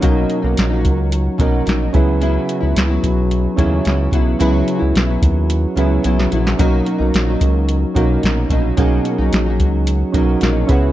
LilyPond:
<<
  \new Staff \with { instrumentName = "Synth keys" } { \time 4/4 \key b \major \tempo 4 = 110 <cis' dis' fis' ais'>4. r4 <cis' dis' fis' ais'>4 <cis' e' gis' b'>8~ | <cis' e' gis' b'>4 r4. <cis' e' gis' cis''>4 r8 | <cis' e' gis' b'>4. r4 <cis' e' gis' b'>4 r8 | <cis' dis' fis' ais'>4. r4 <cis' dis' fis' ais'>4 r8 |
<cis' dis' fis' gis'>4. r4 <cis' dis' fis' ais'>4 <cis' e' gis' b'>8 | }
  \new Staff \with { instrumentName = "Nylon-string guitar" } { \time 4/4 \key b \major <b, fis ais dis'>8. <fis ais dis'>8 <fis ais dis'>4~ <fis ais dis'>16 <b, fis ais dis'>8 <b, fis ais dis'>8 <cis fis b e'>8 | <cis fis b e'>8. <fis b e'>8 <fis b e'>4~ <fis b e'>16 <cis fis b e'>8 <cis fis b e'>8 <cis fis b e'>8 | <cis fis b e'>8. <fis b e'>8 <fis b e'>4~ <fis b e'>16 <cis fis b e'>8 <cis fis b e'>8 <cis fis b e'>8 | <b, fis ais dis'>8. <fis ais dis'>8 <fis ais dis'>4~ <fis ais dis'>16 <b, fis ais dis'>8 <b, fis ais dis'>8 <b, fis ais dis'>8 |
<b, fis ais dis'>8. <fis ais dis'>8 <fis ais dis'>4~ <fis ais dis'>16 <b, fis ais dis'>8 <b, fis ais dis'>8 <cis b e' fis'>8 | }
  \new Staff \with { instrumentName = "Analog synth bass" } { \clef bass \time 4/4 \key b \major b,,8 r16 b,,16 ais,,8 cis,4 b,,8 ais,,8 cis,8~ | cis,8 r16 cis,16 cis,8 b,,4 dis,8 cis,8 b,,8 | cis,8 r16 cis,16 b,,8 dis,4 cis,8 b,,8 ais,,8 | b,,8 r16 b,,16 ais,,8 cis,4 b,,8 ais,,8 ais,,8 |
b,,8 r16 b,,16 ais,,8 cis,4 b,,8 ais,,8 cis,8 | }
  \new DrumStaff \with { instrumentName = "Drums" } \drummode { \time 4/4 <hh bd>8 hh8 <hh sn>8 <hh bd>8 hh8 <hh bd>8 <hh sn>8 <hh bd>8 | hh8 hh8 <hh sn>8 <hh bd>8 hh8 <hh bd>8 <hh sn>8 <hh bd>8 | <hh bd>8 hh8 <hh sn>8 <hh bd>8 hh8 hh8 hh16 sn16 hh16 sn16 | <hh bd>8 hh8 <hh sn>8 <hh bd>8 hh8 <hh bd>8 <hh sn>8 <hh bd>8 |
<hh bd>8 hh8 <hh sn>8 <hh bd>8 hh8 <hh bd>8 <hh sn>8 <hh bd>8 | }
>>